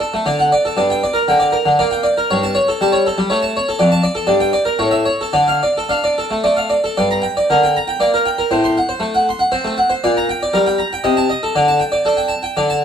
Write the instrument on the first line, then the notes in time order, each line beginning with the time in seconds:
harpsichord
0.00 A4
0.14 A3
0.26 D3 D5
0.39 F#5
0.52 D5
0.65 A4
0.77 G2 D5
0.90 G5
1.03 D5
1.13 A#4
1.28 D3 G5
1.40 D5
1.52 A#4
1.65 D3
1.79 A#3 D5
1.91 G5
2.03 D5
2.17 A#4
2.30 G2 C#5
2.43 A5
2.55 C#5
2.68 A4
2.81 G3 A5
2.92 C#5
3.07 A4
3.18 G3
3.30 A3 C#5
3.42 A5
3.57 C#5
3.69 A4
3.79 F2 D5
3.92 A5
4.03 D5
4.15 A4
4.27 G2 D5
4.40 G5
4.53 D5
4.65 A#4
4.79 A2 C#5
4.91 E5
5.05 C#5
5.21 A4
5.33 D3 D5
5.48 F5
5.63 D5
5.77 A4
5.89 D4 F5
6.04 D5
6.18 A4
6.31 A3
6.44 A3 D5
6.57 F5
6.70 D5
6.84 A4
6.97 G2 D5
7.11 A#5
7.22 G5
7.37 D5
7.50 D3 A#4
7.63 G5
7.77 A#5
7.88 G5
8.00 A#3 D5
8.14 A#4
8.26 G5
8.38 A#4
8.51 A2 C5
8.64 C6
8.78 F#5
8.89 C5
9.00 A3
9.15 F#5
9.29 C6
9.39 F#5
9.52 C4 C5
9.64 A3
9.78 F#5
9.90 C5
10.04 A#2 D5
10.17 A#5
10.29 G5
10.43 D5
10.53 G3 A#4
10.66 G5
10.78 A#5
10.93 G5
11.04 C3 D#5
11.17 A5
11.30 D#5
11.43 A4
11.55 D3 D5
11.68 A5
11.80 G5
11.92 D5
12.05 D4 A4
12.17 G5
12.28 A5
12.43 G5
12.57 D3 D5
12.70 A5